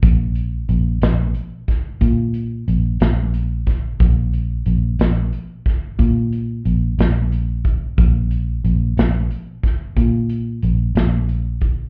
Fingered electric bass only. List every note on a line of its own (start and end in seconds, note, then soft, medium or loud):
0.03 0.65 A#1 medium
0.69 1.00 A#1 medium
1.02 1.33 A#1 medium
2.01 2.64 A#2 loud
2.68 2.98 A#1 medium
3.01 3.97 A#1 loud
4.00 4.63 A#1 medium
4.66 4.97 A#1 medium
4.99 5.30 A#1 medium
5.99 6.61 A#2 medium
6.65 6.96 A#1 medium
6.99 7.94 A#1 loud
7.98 8.60 A#1 medium
8.64 8.95 A#1 medium
8.97 9.28 A#1 medium
9.97 10.59 A#2 loud
10.63 10.94 A#1 medium
10.95 11.89 A#1 loud